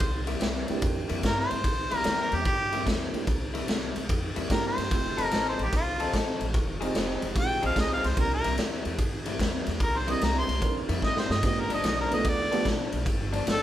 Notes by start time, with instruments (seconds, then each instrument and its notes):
Already playing: harmonica C5
0.00 upright bass C2, kick, ride
0.27 clean electric guitar C3 G3 A#3 E4, ride
0.41 upright bass C2, clean electric guitar C3 G3 A#3 E4, snare, ride
0.68 upright bass C2, upright piano A#3 C4 D4 E4 G4, ride
0.82 upright bass F2, kick, ride
1.09 upright bass F2, clean electric guitar C3 G3 A#3 E4, ride
1.23 upright bass G2, clean electric guitar C3 G3 A#3 E4, harmonica A#4, kick, snare, ride
1.40 harmonica C5
1.51 upright bass G2, ride
1.64 upright bass C2, kick, ride
1.91 upright bass C2, clean electric guitar C3 G3 A#3 E4, ride
1.97 harmonica A#4
2.04 upright bass E2, clean electric guitar C3 G3 A#3 E4, snare, ride
2.21 harmonica A#4
2.32 upright bass E2, harmonica G4, ride
2.45 upright bass G2, harmonica G4, kick, ride
2.73 clean electric guitar C3 G3 A#3 E4, ride
2.87 upright bass E2, clean electric guitar C3 G3 A#3 E4, kick, snare, ride
3.13 upright bass E2, upright piano A#3 C4 D4 E4 G4, ride
3.27 upright bass C2, kick, ride
3.54 clean electric guitar C3 G3 A#3 E4, ride
3.68 upright bass C2, clean electric guitar C3 G3 A#3 E4, snare, ride
3.96 upright bass C2, ride
4.09 upright bass F2, kick, ride
4.36 upright bass F2, clean electric guitar C3 G3 A#3 E4, ride
4.50 upright bass G2, clean electric guitar C3 G3 A#3 E4, upright piano A#3 C4 D4 E4 G4, harmonica A#4, kick, snare, ride
4.67 harmonica C5
4.78 upright bass G2, snare, ride
4.91 upright bass F1, upright piano A3 C4 D#4 F4 G4, kick, ride
5.17 upright bass F1, clean electric guitar F3 C4 D#4 A4, ride
5.25 harmonica A#4
5.31 upright bass A1, clean electric guitar F3 C4 D#4 A4, snare, ride
5.49 harmonica C5
5.59 upright bass A1, ride
5.64 harmonica G4
5.73 upright bass C2, harmonica F4, kick, ride
6.00 clean electric guitar F3 C4 D#4 A4, ride
6.13 upright bass A1, clean electric guitar F3 C4 D#4 A4, kick, snare, ride
6.41 upright bass A1, ride
6.54 upright bass F1, kick, ride
6.81 clean electric guitar F3 C4 D#4 G#4, upright piano G#3 C4 D#4 F4 G4, ride
6.95 upright bass F1, clean electric guitar F3 C4 D#4 G#4, snare, ride
7.22 upright bass F1, ride
7.36 upright bass A#1, upright piano G#3 C4 D#4 F4 G4, kick, ride
7.40 harmonica G5
7.62 upright bass A#1, clean electric guitar F3 C4 D#4 G#4, harmonica F5, ride
7.75 upright bass C2, clean electric guitar F3 C4 D#4 G#4, kick, snare, ride
7.80 harmonica D#5
7.93 harmonica F5
8.04 upright bass C2, harmonica C5, snare, ride
8.17 upright bass C2, upright piano A#3 C4 D4 E4 G4, harmonica A#4, kick, ride
8.34 harmonica A#4
8.44 upright bass C2, clean electric guitar C3 G3 A#3 E4, ride
8.58 upright bass E2, clean electric guitar C3 G3 A#3 E4, snare, ride
8.85 upright bass E2, ride
8.99 upright bass G2, kick, ride
9.26 clean electric guitar C3 G3 A#3 E4, ride
9.39 upright bass E2, clean electric guitar C3 G3 A#3 E4, kick, snare, ride
9.66 upright bass E2, snare, ride
9.80 upright bass C2, harmonica A#4, kick, ride
9.98 harmonica C5
10.07 clean electric guitar C3 G3 A#3 E4, upright piano A#3 C4 D4 E4 G4, ride
10.12 harmonica D#5
10.21 upright bass C2, clean electric guitar C3 G3 A#3 E4, harmonica A#5, snare, ride
10.39 harmonica C6
10.48 upright bass C2, ride
10.62 upright bass F2, upright piano A#3 C4 D4 E4 A#4, kick, ride
10.89 upright bass F2, clean electric guitar C3 G3 A#3 E4, ride
11.02 upright bass G2, clean electric guitar C3 G3 A#3 E4, harmonica D#5, kick, snare
11.17 harmonica C5, snare
11.30 upright bass G2, harmonica D#5, snare
11.43 upright bass G1, upright piano A3 B3 D4 F4 G4, harmonica D#5, kick, ride, splash
11.60 harmonica A#4
11.70 upright bass G1, clean electric guitar G2 F3 B3 D4, ride
11.74 harmonica D#5
11.84 upright bass B1, clean electric guitar G2 F3 B3 D4, harmonica D#5, snare, ride
12.01 harmonica A#4
12.11 upright bass B1, upright piano A3 B3 D4 F4 A4, harmonica D#5, ride
12.25 upright bass D2, kick, ride
12.29 harmonica D5
12.51 clean electric guitar G2 F3 B3 D4, upright piano A3 B3 D4 F4 G4, ride
12.65 upright bass B1, clean electric guitar G2 F3 B3 D4, kick, snare, ride
12.92 upright bass B1, ride
13.06 upright bass G1, kick, ride
13.33 clean electric guitar G2 F3 B3 D4, ride
13.46 upright bass G1, clean electric guitar G2 F3 B3 D4, snare, ride
13.51 harmonica A4